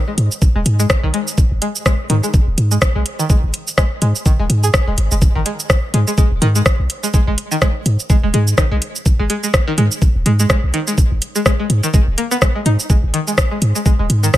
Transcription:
0.08 synth pluck G#3
0.18 sub bass G#2, closed hi-hat
0.32 shaker
0.42 kick, shaker
0.55 sub bass D#1, synth pluck G#3
0.66 sub bass G#2, closed hi-hat
0.80 synth pluck G#3, shaker
0.90 kick, cross-stick, shaker
1.03 sub bass B1, synth pluck D#3
1.14 synth pluck G#3, closed hi-hat
1.28 shaker
1.38 kick, shaker
1.51 sub bass G#1
1.62 synth pluck G#3, closed hi-hat
1.76 shaker
1.86 synth pluck G#3, kick, cross-stick, shaker
2.10 sub bass G#2, synth pluck D#3, closed hi-hat
2.23 synth pluck G#3, shaker
2.34 kick, shaker
2.48 sub bass D#1
2.58 sub bass G#2, closed hi-hat
2.71 synth pluck G#3, shaker
2.82 kick, cross-stick, shaker
2.95 sub bass B1, synth pluck G#3
3.06 closed hi-hat
3.19 synth pluck D#3, shaker
3.30 synth pluck G#3, kick, shaker
3.44 sub bass G#1
3.54 closed hi-hat
3.67 shaker
3.78 synth pluck G#3, kick, cross-stick, shaker
4.02 sub bass G#2, synth pluck G#3, closed hi-hat
4.15 shaker
4.26 synth pluck D#3, kick, shaker
4.39 sub bass D#1, synth pluck G#3
4.50 sub bass G#2, closed hi-hat
4.63 synth pluck G#4, shaker
4.74 kick, cross-stick, shaker
4.87 sub bass D#1, synth pluck G#3
4.98 sub bass G#1, closed hi-hat
5.12 sub bass F#1, synth pluck G#3, shaker
5.22 kick, shaker
5.35 sub bass G#1, synth pluck D#3
5.46 synth pluck G#3, closed hi-hat
5.60 shaker
5.70 kick, cross-stick, shaker
5.94 sub bass G#2, synth pluck G#3, closed hi-hat
6.08 synth pluck G#3, shaker
6.18 synth pluck G#3, kick, shaker
6.32 sub bass D#1
6.42 sub bass G#2, synth pluck D#3, closed hi-hat
6.56 synth pluck G#3, shaker
6.66 kick, cross-stick, shaker
6.79 sub bass B1
6.90 closed hi-hat
7.03 synth pluck G#3, shaker
7.14 synth pluck G#3, kick, shaker
7.27 sub bass G#1, synth pluck G#3
7.38 closed hi-hat
7.52 synth pluck D#3, shaker
7.62 synth pluck G#3, kick, cross-stick, shaker
7.86 sub bass G#2, closed hi-hat
8.00 shaker
8.10 synth pluck G#3, kick, shaker
8.23 sub bass D#1, synth pluck G#3
8.34 sub bass G#2, synth pluck G#3, closed hi-hat
8.48 shaker
8.58 synth pluck D#3, kick, cross-stick, shaker
8.71 sub bass B1, synth pluck G#3
8.82 closed hi-hat
8.96 shaker
9.06 kick, shaker
9.19 sub bass G#1, synth pluck G#3
9.30 synth pluck G#3, closed hi-hat
9.44 synth pluck G#3, shaker
9.54 kick, cross-stick, shaker
9.67 synth pluck D#3
9.78 sub bass G#2, synth pluck G#3, closed hi-hat
9.92 shaker
10.02 kick, shaker
10.16 sub bass D#1
10.26 sub bass G#2, synth pluck G#3, closed hi-hat
10.39 synth pluck G#3, shaker
10.50 synth pluck G#3, kick, cross-stick, shaker
10.64 sub bass B1
10.74 synth pluck D#3, closed hi-hat
10.87 synth pluck G#3, shaker
10.98 kick, shaker
11.12 sub bass G#1
11.22 closed hi-hat
11.35 synth pluck G#3, shaker
11.46 synth pluck G#3, kick, cross-stick, shaker
11.60 synth pluck G#3
11.70 sub bass G#2, closed hi-hat
11.83 synth pluck D#3, shaker
11.94 synth pluck G#3, kick, shaker
12.08 sub bass D#1
12.18 synth pluck A#3, closed hi-hat
12.32 synth pluck B3, shaker
12.42 synth pluck G#3, kick, cross-stick, shaker
12.55 synth pluck G#3
12.66 sub bass G#2, synth pluck D#4, closed hi-hat
12.80 shaker
12.90 synth pluck G#3, kick, shaker
13.04 sub bass G#1
13.14 synth pluck D#3, closed hi-hat
13.28 synth pluck G#3, shaker
13.38 kick, cross-stick, shaker
13.51 synth pluck G#3
13.62 sub bass G#2, closed hi-hat
13.75 synth pluck G#3, shaker
13.86 synth pluck G#3, kick, shaker
13.99 sub bass D#1, synth pluck G#3
14.10 sub bass G#2, closed hi-hat
14.23 synth pluck D#3, shaker
14.34 synth pluck G#3, kick, cross-stick, shaker

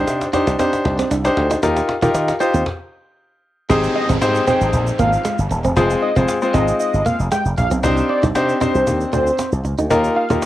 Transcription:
Already playing: grand piano D4 D#4 G4 C5
0.07 slap bass C3, muted clean electric guitar stroke, cajon slap, shaker
0.21 cajon slap, shaker
0.33 grand piano D4 D#4 G4 C5, clean electric guitar D#4, cajon bass, cajon slap, shaker
0.47 slap bass C2, clean electric guitar D4, cajon slap, shaker
0.59 clean electric guitar C4, grand piano D4 D#4 G4 C5, cajon bass, cajon slap, shaker
0.73 cajon slap, shaker
0.85 slap bass C2, muted clean electric guitar stroke, cajon bass, cajon slap
0.99 clean electric guitar C4, cajon slap, shaker
1.11 slap bass C2, clean electric guitar D4, cajon slap, shaker
1.24 grand piano D4 D#4 G4 C5, muted clean electric guitar stroke, cajon slap, shaker
1.37 slap bass D2, cajon slap
1.51 clean electric guitar D#4, cajon slap, shaker
1.63 slap bass D#2, grand piano D#4 F4 G4 A#4, clean electric guitar D#4, cajon bass, cajon slap, shaker
1.76 cajon slap, shaker
1.89 muted clean electric guitar stroke, cajon slap
2.02 slap bass D#3, grand piano D#4 F4 G4 A#4, clean electric guitar F4, cajon bass, cajon slap, shaker
2.14 slap bass D#3, muted clean electric guitar stroke, cajon slap, shaker
2.28 cajon slap, shaker
2.40 grand piano D#4 F4 G4 C5, clean electric guitar D#4, cajon slap, shaker
2.54 slap bass D#2, clean electric guitar C4, shaker
2.66 cajon bass, cajon slap
3.69 slap bass G#1, clean electric guitar G#3, grand piano C4 D#4 G4 G#4 C5, cajon bass, downlifter, shaker
3.83 shaker
3.96 analog synth lead D#5, muted clean electric guitar stroke
4.09 slap bass G#1, clean electric guitar C4, cajon bass, shaker
4.21 slap bass G#2, grand piano C4 D#4 G4 G#4 C5, cajon slap, shaker
4.35 shaker
4.47 grand piano C4 D#4 G4 G#4 C5, clean electric guitar C4, analog synth lead G5, cajon bass, shaker
4.61 slap bass G#1, shaker
4.73 slap bass A#1, cajon bass, shaker
4.87 shaker
4.99 slap bass G#1, clean electric guitar A#3, analog synth lead F5, cajon bass, shaker
5.13 shaker
5.25 clean electric guitar G#3, cajon slap, shaker
5.39 slap bass G1, cajon slap, shaker
5.51 slap bass D#1, muted clean electric guitar stroke, shaker
5.64 slap bass E1, clean electric guitar C4, shaker
5.76 slap bass F1, grand piano G#3 C4 F4 G#4 C5, clean electric guitar F4, cajon bass, shaker
5.90 shaker
6.02 analog synth lead D#5, muted clean electric guitar stroke, cajon slap
6.16 slap bass F1, grand piano G#3 C4 F4 G#4 C5, clean electric guitar C4, cajon bass, shaker
6.28 cajon slap, shaker
6.42 grand piano G#3 C4 F4 G#4 C5, shaker
6.54 slap bass G#1, clean electric guitar C4, analog synth lead D#5, cajon bass, shaker
6.68 shaker
6.80 analog synth lead D#5, cajon slap, shaker
6.94 slap bass G1, shaker
7.06 clean electric guitar A#3, analog synth lead F5, cajon bass, shaker
7.20 slap bass F1, shaker
7.32 clean electric guitar G#3, analog synth lead G5, cajon slap, shaker
7.45 slap bass F1, cajon slap, shaker
7.57 slap bass A#1, analog synth lead F5, muted clean electric guitar stroke, cajon bass, shaker
7.71 slap bass B1, clean electric guitar C4, shaker
7.83 slap bass C2, grand piano C4 D4 D#4 G4 C5, clean electric guitar C4, cajon bass, shaker
7.97 shaker
8.09 analog synth lead D5, muted clean electric guitar stroke, cajon slap
8.23 slap bass C2, clean electric guitar D#4, cajon bass, shaker
8.35 slap bass C3, grand piano C4 D4 D#4 G4 C5, cajon slap, shaker
8.49 shaker
8.61 grand piano C4 D4 D#4 G4 C5, clean electric guitar D#4, analog synth lead C5, cajon bass, shaker
8.75 slap bass C2, shaker
8.87 slap bass D#2, cajon bass, shaker
9.01 shaker
9.13 slap bass D2, clean electric guitar D4, analog synth lead C5, cajon bass, shaker
9.27 shaker
9.39 clean electric guitar C4, cajon slap, shaker
9.52 slap bass C2, cajon slap, shaker
9.64 slap bass C#2, muted clean electric guitar stroke, cajon slap, shaker
9.78 slap bass D2, clean electric guitar D#4, shaker
9.90 slap bass D#2, grand piano A#3 D#4 F4 G4 A#4, clean electric guitar D#4, cajon bass, shaker
10.04 shaker
10.16 analog synth lead F5, muted clean electric guitar stroke
10.30 slap bass D#2, grand piano A#3 D#4 F4 G4 A#4, clean electric guitar F4, cajon bass, shaker
10.42 cajon slap, shaker

